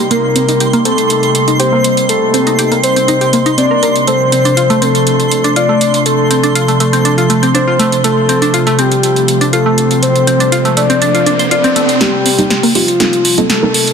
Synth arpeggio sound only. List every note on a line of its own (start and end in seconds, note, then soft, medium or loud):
0.11 0.22 A#3 medium
0.36 0.47 C4 medium
0.49 0.56 D#4 medium
0.60 0.68 G4 medium
0.73 0.80 A#3 loud
0.85 0.93 C4 medium
1.48 1.55 D#4 medium
1.60 1.67 G4 medium
1.72 1.83 A#3 medium
2.34 2.42 C4 medium
2.47 2.54 D#4 medium
2.59 2.63 G4 medium
2.72 2.82 A#3 medium
2.96 3.07 C4 medium
3.08 3.16 D#4 medium
3.21 3.32 G4 medium
3.33 3.38 A#3 medium
3.46 3.53 D#4 loud
3.58 3.69 C4 medium
3.71 3.78 A#4 medium
3.83 3.87 A#4 medium
4.07 4.19 A3 medium
4.32 4.44 C4 medium
4.45 4.52 D4 medium
4.57 4.65 F4 medium
4.70 4.77 A3 loud
4.82 4.89 C4 medium
5.44 5.51 D4 medium
5.56 5.64 F4 medium
5.69 5.80 A3 medium
6.31 6.38 C4 medium
6.43 6.51 D4 medium
6.55 6.60 F4 medium
6.68 6.79 A3 medium
6.80 6.88 A3 medium
6.93 7.04 C4 medium
7.05 7.13 D4 medium
7.18 7.28 F4 medium
7.30 7.37 A3 medium
7.43 7.50 C4 medium
7.54 7.62 D4 medium
7.68 7.78 F4 medium
7.79 7.91 A3 loud
8.04 8.16 A3 medium
8.29 8.40 C4 medium
8.42 8.49 D4 medium
8.54 8.61 F4 medium
8.67 8.74 A3 loud
8.79 8.86 C4 medium
9.41 9.48 D4 medium
9.53 9.61 F4 medium
9.66 9.76 A3 medium
10.27 10.35 C4 medium
10.40 10.47 D4 medium
10.52 10.57 F4 medium
10.65 10.76 A3 medium
10.77 10.85 A3 medium
10.90 11.00 C4 medium
11.02 11.09 D4 medium
11.15 11.25 F4 medium
11.26 11.31 D4 medium
11.39 11.50 C5 medium
11.51 11.56 F4 medium
11.64 11.68 C4 loud
11.76 11.84 A3 medium
12.01 12.12 A#3 medium
12.26 12.37 C4 medium
12.38 12.46 D#4 medium
12.50 12.58 G4 medium
12.63 12.70 A#3 loud
12.75 12.83 C4 medium
13.38 13.45 D#4 medium
13.50 13.57 G4 medium
13.62 13.73 A#3 medium